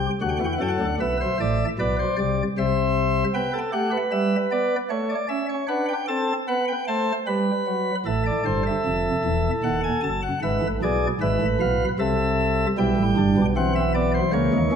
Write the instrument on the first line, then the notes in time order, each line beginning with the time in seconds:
pipe organ
Already playing: G5
0.21 D2 D3 F#4 F#5
0.29 G5
0.37 E2 E3 F#5
0.44 G5
0.53 F#5
0.60 F#2 F#3 A4 G5
0.68 F#5
0.80 D2 D3
1.00 B1 B2 B4 E5
1.21 C5
1.40 A1 A2 D5
1.79 B1 B2 B4 D5
1.99 C5
2.18 C2 C3 D5
2.58 C2 C3 C5 E5
3.34 B3 B4 G5
3.54 A4
3.73 A3 G4 F#5
3.91 B4
4.11 G3 E5
4.51 B3 D5
4.90 A3 C#5
5.10 D5
5.29 C#4 E5
5.49 C#5
5.68 D4 B4 F#5
5.88 G5
6.08 C4 A4 A5
6.48 B3 B4 F#5
6.68 G5
6.88 A3 C5 A5
7.27 G3 B4 B5
7.67 F#3
8.06 A1 A2 A4 E5
8.26 D5
8.45 G1 G2 C5
8.67 E5
8.85 F1 F2
9.25 E1 E2
9.64 D#1 D#2 F#5
9.84 G#5
10.03 F#1 F#2 A5
10.22 F#5
10.42 G#1 G#2 B4 E5
10.62 A1 A2
10.83 B1 B2 G#4 D5
11.21 G#1 G#2 B4 E5
11.41 A1 A2
11.60 B1 B2 F5
11.99 C2 C3 A4 E5
12.78 B1 B2 G3 E4 G5
12.97 A1 A2
13.17 G1 G2 D4
13.37 B1 B2
13.56 E3 C4 F#5
13.76 E5
13.94 B3 D5
14.14 C5
14.33 C#2 C#3 A#3 C#5
14.53 D#2 D#3
14.72 E2 E3 C#4